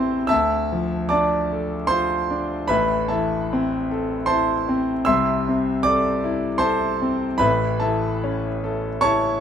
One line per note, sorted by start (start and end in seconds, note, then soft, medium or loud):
0.00 0.27 A1 medium
0.00 0.28 A2 medium
0.00 0.33 E3 medium
0.00 0.33 C4 medium
0.00 0.15 E4 medium
0.00 0.33 A4 medium
0.00 0.26 C5 medium
0.00 0.29 E5 medium
0.00 0.29 A5 medium
0.00 0.29 C6 loud
0.27 2.67 D2 medium
0.27 1.07 E5 loud
0.27 1.07 A5 medium
0.27 1.11 E6 loud
0.72 1.37 F3 medium
1.09 1.76 D4 medium
1.09 1.86 D5 medium
1.09 1.86 A5 medium
1.09 1.90 D6 loud
1.52 2.14 A4 medium
1.87 2.54 F4 medium
1.87 2.65 C5 medium
1.87 2.69 C6 loud
2.31 2.71 D4 medium
2.68 5.03 A1 medium
2.68 5.04 A2 medium
2.68 3.08 B4 medium
2.68 3.08 E5 medium
2.68 3.10 B5 loud
3.08 3.75 E3 medium
3.08 3.90 A4 medium
3.08 4.25 E5 medium
3.08 4.26 A5 medium
3.53 4.15 C4 medium
3.91 4.53 A4 medium
4.26 4.92 E4 medium
4.26 5.02 C5 medium
4.26 5.03 A5 medium
4.26 5.05 C6 loud
4.69 5.08 C4 medium
5.05 7.38 C2 medium
5.05 7.39 C3 medium
5.05 5.81 E5 medium
5.05 5.81 C6 medium
5.05 5.84 E6 loud
5.48 6.09 C4 medium
5.83 6.47 A4 medium
5.83 6.58 D5 medium
5.83 6.61 D6 loud
6.24 6.86 E4 medium
6.58 7.26 A4 medium
6.58 7.37 C5 medium
6.58 7.37 A5 medium
6.58 7.40 C6 loud
7.02 7.42 C4 medium
7.38 9.40 A1 medium
7.38 9.40 A2 medium
7.38 7.78 B4 medium
7.38 7.78 E5 medium
7.38 7.80 B5 loud
7.80 8.47 E3 medium
7.80 8.62 A4 medium
7.80 8.99 E5 medium
7.80 9.00 A5 medium
8.24 8.88 C#4 medium
8.64 9.29 A4 medium
9.01 9.40 E4 medium
9.01 9.40 C#5 medium
9.01 9.40 A5 loud
9.01 9.40 C#6 loud